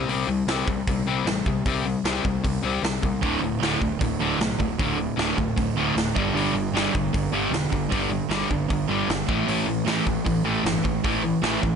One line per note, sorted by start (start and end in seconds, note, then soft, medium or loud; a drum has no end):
0.08 0.23 C2 medium
0.08 0.27 C3 medium
0.08 0.27 G3 medium
0.08 0.28 C4 medium
0.08 open hi-hat medium
0.28 0.43 C2 medium
0.28 0.46 C3 medium
0.28 0.46 G3 medium
0.47 0.62 C2 medium
0.47 0.66 C3 medium
0.47 0.67 G3 medium
0.47 0.67 C4 medium
0.47 snare loud
0.47 open hi-hat medium
0.67 0.82 C2 medium
0.67 0.85 C3 medium
0.67 0.85 G3 medium
0.67 kick medium
0.87 1.02 C2 medium
0.87 1.05 C3 medium
0.87 1.06 G3 medium
0.87 kick loud
0.87 open hi-hat medium
1.05 1.20 C2 medium
1.05 1.25 C3 medium
1.05 1.25 G3 loud
1.05 1.26 C4 loud
1.25 1.40 A1 medium
1.25 1.44 C3 medium
1.25 1.44 G3 medium
1.25 snare loud
1.25 open hi-hat medium
1.46 1.60 C2 medium
1.46 1.64 C3 medium
1.46 1.64 G3 medium
1.46 kick medium
1.66 1.95 C2 medium
1.66 1.84 C3 medium
1.66 1.85 G3 loud
1.66 1.85 C4 loud
1.66 kick loud
1.66 open hi-hat medium
1.86 2.03 C3 medium
1.86 2.03 G3 medium
2.04 2.19 C2 medium
2.04 2.23 C3 medium
2.04 2.23 G3 medium
2.04 2.24 C4 medium
2.04 snare loud
2.04 open hi-hat medium
2.24 2.39 C2 medium
2.24 2.42 C3 medium
2.24 2.42 G3 medium
2.24 kick medium
2.44 2.59 C2 medium
2.44 2.61 C3 medium
2.44 2.61 G3 medium
2.44 kick loud
2.44 open hi-hat medium
2.63 2.78 C2 medium
2.63 2.81 C3 medium
2.63 2.82 G3 medium
2.63 2.82 C4 medium
2.82 2.97 C2 medium
2.82 3.01 C3 medium
2.82 3.01 G3 medium
2.82 snare loud
2.82 open hi-hat medium
3.02 3.17 C2 medium
3.02 3.20 C3 medium
3.02 3.20 G3 medium
3.02 kick medium
3.22 3.37 D1 medium
3.22 3.40 D2 medium
3.22 3.41 A2 loud
3.22 3.41 D3 medium
3.22 kick loud
3.22 open hi-hat medium
3.41 3.56 D1 medium
3.41 3.60 D2 medium
3.41 3.60 A2 medium
3.61 3.75 D1 medium
3.61 3.80 D2 medium
3.61 3.80 A2 medium
3.61 3.81 D3 medium
3.61 snare loud
3.61 open hi-hat medium
3.81 3.96 D1 medium
3.81 3.98 D2 medium
3.81 3.99 A2 medium
3.81 kick medium
4.01 4.15 D1 medium
4.01 4.19 D2 medium
4.01 4.19 A2 medium
4.01 kick loud
4.01 open hi-hat medium
4.20 4.34 D1 medium
4.20 4.38 D2 medium
4.20 4.39 A2 medium
4.20 4.39 D3 loud
4.39 4.54 B1 medium
4.39 4.57 D2 medium
4.39 4.58 A2 medium
4.39 snare loud
4.39 open hi-hat medium
4.59 4.74 D1 medium
4.59 4.76 D2 medium
4.59 4.77 A2 medium
4.59 kick medium
4.79 5.08 D1 medium
4.79 4.97 D2 medium
4.79 4.97 A2 loud
4.79 4.98 D3 loud
4.79 kick loud
4.79 open hi-hat medium
4.98 5.15 D2 medium
4.98 5.16 A2 medium
5.16 5.32 D1 medium
5.16 5.35 D2 medium
5.16 5.36 A2 medium
5.16 5.36 D3 medium
5.16 snare loud
5.16 open hi-hat medium
5.37 5.52 D1 medium
5.37 5.55 D2 medium
5.37 5.55 A2 medium
5.37 kick medium
5.56 5.72 D1 medium
5.56 5.74 D2 medium
5.56 5.74 A2 medium
5.56 kick loud
5.56 open hi-hat medium
5.75 5.90 D1 medium
5.75 5.93 D2 medium
5.75 5.94 A2 medium
5.75 5.95 D3 medium
5.95 6.11 D1 medium
5.95 6.13 D2 medium
5.95 6.13 A2 medium
5.95 snare loud
5.95 open hi-hat medium
6.15 6.30 G1 medium
6.15 6.34 G2 medium
6.15 6.34 D3 medium
6.15 6.34 G3 loud
6.15 kick loud
6.34 6.49 G1 medium
6.34 6.53 G2 medium
6.34 6.53 D3 medium
6.34 6.54 G3 loud
6.34 open hi-hat medium
6.53 6.68 G1 medium
6.53 6.72 G2 medium
6.53 6.72 D3 medium
6.72 6.88 G1 medium
6.72 6.93 G2 medium
6.72 6.93 D3 loud
6.72 6.93 G3 loud
6.72 open hi-hat medium
6.77 snare loud
6.94 7.09 G1 medium
6.94 7.11 G2 medium
6.94 7.12 D3 medium
6.94 kick loud
7.13 7.28 G1 medium
7.13 7.31 G2 medium
7.13 7.31 D3 medium
7.13 kick loud
7.13 open hi-hat medium
7.32 7.47 G1 medium
7.32 7.51 G2 medium
7.32 7.51 D3 medium
7.32 7.51 G3 loud
7.50 7.66 E1 medium
7.50 7.70 G2 medium
7.50 7.71 D3 medium
7.50 open hi-hat medium
7.54 snare loud
7.72 7.87 G1 medium
7.72 7.90 G2 medium
7.72 7.90 D3 medium
7.72 kick medium
7.91 8.21 G1 medium
7.91 8.10 G2 medium
7.91 8.10 D3 loud
7.91 8.10 G3 loud
7.91 kick loud
7.91 open hi-hat medium
8.11 8.29 G2 medium
8.11 8.29 D3 medium
8.29 8.44 G1 medium
8.29 8.49 G2 medium
8.29 8.49 D3 medium
8.29 8.49 G3 medium
8.29 snare loud
8.29 open hi-hat medium
8.50 8.65 G1 medium
8.50 8.68 G2 medium
8.50 8.68 D3 medium
8.50 kick medium
8.70 8.84 G1 medium
8.70 8.87 G2 medium
8.70 8.88 D3 medium
8.70 kick loud
8.70 open hi-hat medium
8.89 9.04 G1 medium
8.89 9.07 G2 medium
8.89 9.08 D3 medium
8.89 9.08 G3 loud
9.09 9.23 G1 medium
9.09 9.27 G2 medium
9.09 9.27 D3 medium
9.09 snare loud
9.09 open hi-hat medium
9.28 9.43 A1 medium
9.28 9.47 A2 medium
9.28 9.47 E3 medium
9.28 9.47 A3 medium
9.28 kick loud
9.48 9.62 A1 medium
9.48 9.66 A2 medium
9.48 9.66 E3 medium
9.48 9.67 A3 medium
9.48 open hi-hat medium
9.66 9.81 A1 medium
9.66 9.85 A2 medium
9.66 9.85 E3 medium
9.85 10.00 A1 medium
9.85 10.05 A2 medium
9.85 10.05 E3 medium
9.85 10.05 A3 medium
9.85 snare loud
9.85 open hi-hat medium
10.06 10.21 A1 medium
10.06 10.24 A2 medium
10.06 10.24 E3 medium
10.06 kick medium
10.25 10.40 A1 medium
10.25 10.43 A2 medium
10.25 10.43 E3 medium
10.25 kick loud
10.25 open hi-hat medium
10.44 10.59 A1 medium
10.44 10.63 A2 medium
10.44 10.63 E3 medium
10.44 10.64 A3 loud
10.64 10.78 G1 medium
10.64 10.82 A2 medium
10.64 10.83 E3 medium
10.64 snare loud
10.64 open hi-hat medium
10.84 10.99 A1 medium
10.84 11.02 A2 medium
10.84 11.02 E3 medium
10.84 kick medium
11.04 11.33 A1 medium
11.04 11.22 A2 medium
11.04 11.23 E3 medium
11.04 11.22 A3 medium
11.04 kick loud
11.04 open hi-hat medium
11.23 11.41 A2 medium
11.23 11.41 E3 medium
11.42 11.58 A1 medium
11.42 11.61 A2 medium
11.42 11.61 E3 medium
11.42 11.62 A3 medium
11.42 snare loud
11.42 open hi-hat medium
11.62 11.76 A1 medium
11.62 11.76 A2 medium
11.62 11.76 E3 medium
11.62 kick medium